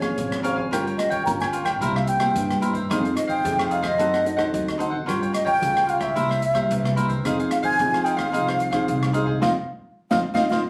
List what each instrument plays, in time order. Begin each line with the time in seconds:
Already playing: nylon-string guitar A#3, flute C#5
0.01 nylon-string guitar C#4 G#4, cavaquinho C#5 F5 G#5, kick, cross-stick, closed hi-hat
0.18 upright bass G#1, nylon-string guitar F3, kick, closed hi-hat
0.32 cross-stick, closed hi-hat
0.43 nylon-string guitar C#4 G#4 C5, cavaquinho A#4 C#5 F5 G#5, closed hi-hat
0.56 cavaquinho C#5 F5 G#5, kick
0.71 upright bass G1, nylon-string guitar G3 C#4 F4 A#4, cavaquinho F4 A#4 C#5 G5, kick, cross-stick, closed hi-hat
0.86 cavaquinho A#4 C#5 G5, closed hi-hat
0.98 flute D#5, muted cavaquinho stroke, cross-stick, closed hi-hat
1.10 cavaquinho A#4 C#5 G5, flute G5, kick, closed hi-hat
1.26 upright bass G1, nylon-string guitar G3 C#4 F4 A#4, flute A#5, kick, closed hi-hat
1.40 cavaquinho A#4 C#5 G5, flute G#5, cross-stick, closed hi-hat
1.52 cavaquinho F4 A#4 C#5 G5, closed hi-hat
1.65 cavaquinho A#4 C#5 G5, flute G5, kick, cross-stick, closed hi-hat
1.81 upright bass C2, nylon-string guitar C3 G3 A#3 E4, cavaquinho E4 A#4 C5 E5, kick, closed hi-hat
1.96 cavaquinho A#4 C5 E5, flute F5, cross-stick
2.07 flute G5, muted cavaquinho stroke, closed hi-hat
2.19 nylon-string guitar G3 A#3 E4, cavaquinho A#4 C5 E5, kick, cross-stick, closed hi-hat
2.36 nylon-string guitar G2, upright bass G2, kick, closed hi-hat
2.50 cross-stick, closed hi-hat
2.61 nylon-string guitar G3 A#3 E4, cavaquinho E4 A#4 C5 E5, closed hi-hat
2.73 cavaquinho A#4 C5 E5, kick, closed hi-hat
2.90 upright bass F2, nylon-string guitar F3 C4 D#4 G#4, cavaquinho D#4 G#4 C5 F5, kick, cross-stick, closed hi-hat
3.03 cavaquinho G#4 C5 F5, closed hi-hat
3.15 flute D#5, muted cavaquinho stroke, cross-stick, closed hi-hat
3.27 cavaquinho G#4 C5 F5, flute G5, kick, closed hi-hat
3.45 upright bass F2, nylon-string guitar C3 C4 D#4 G#4, kick, closed hi-hat
3.58 cavaquinho G#4 C5 F5, cross-stick, closed hi-hat
3.70 cavaquinho D#4 G#4 C5 F5, flute F5, closed hi-hat
3.82 cavaquinho G#4 C5 F5, flute D#5, kick, cross-stick, closed hi-hat
3.98 upright bass F#2, nylon-string guitar F#3 C4 D#4 A4, cavaquinho D#4 A4 C5 F#5, kick, closed hi-hat
4.14 cavaquinho A4 C5 F#5, cross-stick, closed hi-hat
4.25 nylon-string guitar C4 D#4 A4, muted cavaquinho stroke, closed hi-hat
4.37 nylon-string guitar C4 D#4 A4, cavaquinho A4 C5 F#5, kick, cross-stick, closed hi-hat
4.54 upright bass D2, nylon-string guitar F#3, kick, closed hi-hat
4.68 cross-stick, closed hi-hat
4.78 nylon-string guitar C4 D#4 A4, cavaquinho D#4 A4 C5 F#5, closed hi-hat
4.91 cavaquinho A4 C5 F#5, kick
5.06 upright bass G2, nylon-string guitar G3 C#4 F4 A#4, cavaquinho F4 A#4 C#5 G5, kick, cross-stick, closed hi-hat
5.22 cavaquinho A#4 C#5 G5, closed hi-hat
5.33 flute D#5, muted cavaquinho stroke, cross-stick, closed hi-hat
5.45 cavaquinho A#4 C#5 G5, flute G5, kick, closed hi-hat
5.61 upright bass C#2, nylon-string guitar G3 C#4 F4 A#4, kick, closed hi-hat
5.75 cavaquinho A#4 C#5 G5, cross-stick, closed hi-hat
5.87 cavaquinho F4 A#4 C#5 G5, flute F5, closed hi-hat
6.00 cavaquinho A#4 C#5 G5, flute E5, kick, cross-stick, closed hi-hat
6.15 upright bass C2, nylon-string guitar C3 G3 A#3 E4, cavaquinho E4 A#4 C5 E5, kick, closed hi-hat
6.29 cavaquinho A#4 C5 E5, cross-stick
6.42 muted cavaquinho stroke, closed hi-hat
6.54 nylon-string guitar G3 A#3 E4, cavaquinho A#4 C5 E5, kick, cross-stick, closed hi-hat
6.71 upright bass C2, nylon-string guitar G2, kick, closed hi-hat
6.85 cross-stick, closed hi-hat
6.96 nylon-string guitar G3 A#3 E4, cavaquinho E4 A#4 C5 E5, closed hi-hat
7.08 cavaquinho A#4 C5 E5, kick, closed hi-hat
7.25 upright bass F2, nylon-string guitar F3 C4 D#4 G#4, cavaquinho D#4 G#4 C5 F5, kick, cross-stick, closed hi-hat
7.39 cavaquinho G#4 C5 F5, closed hi-hat
7.51 flute F5, muted cavaquinho stroke, cross-stick, closed hi-hat
7.63 cavaquinho G#4 C5 F5, flute G#5, kick, closed hi-hat
7.79 upright bass F2, nylon-string guitar C3 C4 D#4 G#4, kick, closed hi-hat
7.93 cavaquinho G#4 C5 F5, cross-stick, closed hi-hat
8.04 cavaquinho D#4 G#4 C5 F5, flute G5, closed hi-hat
8.17 cavaquinho G#4 C5 F5, flute F5, kick, cross-stick, closed hi-hat
8.32 upright bass C2, nylon-string guitar F3 C4 D#4 G#4, cavaquinho D#4 G#4 C5 F5, kick, closed hi-hat
8.47 cavaquinho G#4 C5 F5, cross-stick, closed hi-hat
8.59 muted cavaquinho stroke, closed hi-hat
8.71 nylon-string guitar C4 D#4 G#4, cavaquinho G#4 C5 F5, kick, cross-stick, closed hi-hat
8.88 upright bass C2, nylon-string guitar C3, kick, closed hi-hat
9.03 cross-stick, closed hi-hat
9.13 nylon-string guitar C4 D#4 G#4, cavaquinho D#4 G#4 C5 F5, closed hi-hat
9.26 cavaquinho G#4 C5 F5, kick
9.41 upright bass F2, nylon-string guitar C4 D#4 F4, cavaquinho C5 D#5 F5, flute F5, kick, snare
10.11 upright bass F2, nylon-string guitar C4 D#4 F4, cavaquinho C5 D#5 F5, flute F5, kick, snare
10.34 upright bass F2, nylon-string guitar C4 D#4 F4, cavaquinho C5 D#5 F5, flute F5, kick, snare
10.49 upright bass F2, nylon-string guitar C4 D#4 F4, cavaquinho C5 D#5 F5, flute F5, kick, snare